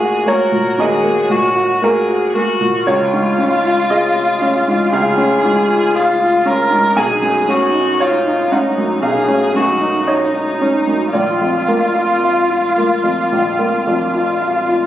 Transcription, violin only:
0.00 0.29 G#4 soft
0.28 0.82 A#4 soft
0.80 1.33 G#4 soft
1.31 1.85 F#4 soft
1.83 2.35 G#4 soft
2.36 2.89 F#4 soft
2.87 4.92 F4 medium
4.93 5.98 G#4 medium
5.96 6.48 F4 soft
6.46 6.99 A#4 medium
6.98 7.52 G#4 soft
7.50 8.03 F#4 medium
8.01 8.54 F4 soft
8.53 9.03 D#4 soft
9.03 9.58 G#4 soft
9.56 10.09 F#4 soft
10.07 11.13 D#4 soft
11.14 14.87 F4 soft

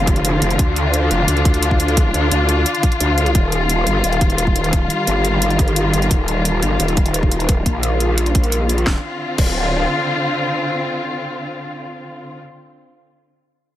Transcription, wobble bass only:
0.00 0.40 F1 medium
0.42 0.58 F1 loud
0.59 1.09 D2 medium
1.11 1.27 F1 medium
1.28 1.78 D2 medium
1.80 2.13 D2 medium
2.14 2.30 D2 loud
2.32 2.65 D2 loud
3.00 3.34 D2 loud
3.35 3.85 D#1 medium
3.87 4.03 G1 medium
4.04 4.54 D#1 loud
4.56 4.89 D#1 loud
5.07 5.92 G1 medium
5.94 6.09 G1 loud
6.11 6.61 D#1 medium
6.63 6.78 G1 medium
6.80 7.30 D#1 medium
7.31 7.65 D#1 loud
7.66 8.85 A#1 medium
8.87 8.96 D1 medium
9.38 9.86 D1 medium

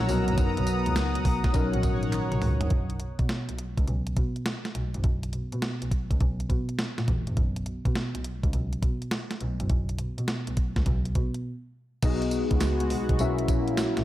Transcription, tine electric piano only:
0.00 0.08 F#3 medium
0.00 0.11 C#4 medium
0.00 0.11 E4 medium
0.00 0.10 A#4 medium
0.08 1.51 F#3 medium
0.08 1.52 B3 medium
0.08 1.52 D#4 medium
0.08 1.52 A#4 medium
1.53 2.68 F#3 medium
1.53 2.69 C#4 medium
1.53 2.69 D#4 medium
1.53 2.69 A#4 medium
12.03 13.17 B3 medium
12.03 13.17 D#4 medium
12.03 13.18 F#4 medium
12.03 13.18 G#4 medium
12.03 13.18 D#5 medium
13.20 14.04 C#4 medium
13.20 14.04 E4 medium
13.20 14.04 F#4 medium
13.20 14.04 A#4 medium
13.20 14.04 E5 medium

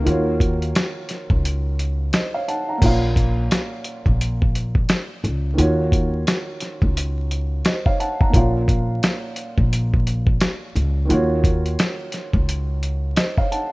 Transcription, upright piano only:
0.02 2.76 D#3 medium
0.02 2.77 A#3 medium
0.02 2.78 F4 medium
0.07 2.79 F#4 medium
0.07 2.11 C#5 medium
2.13 2.33 C5 medium
2.13 2.33 D#5 medium
2.34 2.47 C#5 medium
2.34 2.47 F5 medium
2.48 2.68 F#5 medium
2.48 2.68 A5 medium
2.69 3.02 F#5 medium
2.69 3.01 A#5 medium
2.78 5.52 A#2 medium
2.78 5.53 A#3 medium
2.78 5.54 C#4 medium
2.84 5.55 F4 medium
2.84 5.56 F5 medium
5.54 8.28 D#3 medium
5.54 8.29 A#3 medium
5.54 8.30 F4 medium
5.59 8.30 F#4 medium
5.59 7.62 C#5 medium
7.65 7.85 C5 medium
7.65 7.85 D#5 medium
7.86 7.99 C#5 medium
7.86 7.99 F5 medium
8.00 8.20 F#5 medium
8.00 8.20 A5 medium
8.21 8.54 F#5 medium
8.21 8.53 A#5 medium
8.30 11.04 A#2 medium
8.30 11.05 A#3 medium
8.30 11.05 C#4 medium
8.35 11.06 F4 medium
8.35 11.07 F5 medium
11.05 13.72 D#3 medium
11.05 13.72 A#3 medium
11.05 13.72 F4 medium
11.11 13.72 F#4 medium
11.11 13.14 C#5 medium
13.16 13.37 C5 medium
13.16 13.37 D#5 medium
13.38 13.51 C#5 medium
13.38 13.50 F5 medium
13.52 13.71 F#5 medium
13.52 13.71 A5 medium

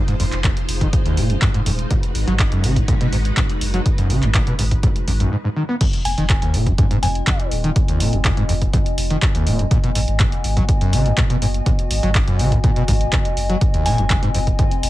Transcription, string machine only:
0.00 1.87 G#3 medium
0.00 1.87 D#4 medium
0.00 1.87 F4 medium
0.00 1.87 C5 medium
1.91 5.29 G#3 medium
1.91 5.29 D#4 medium
1.91 5.29 F#4 medium
1.91 5.29 B4 medium

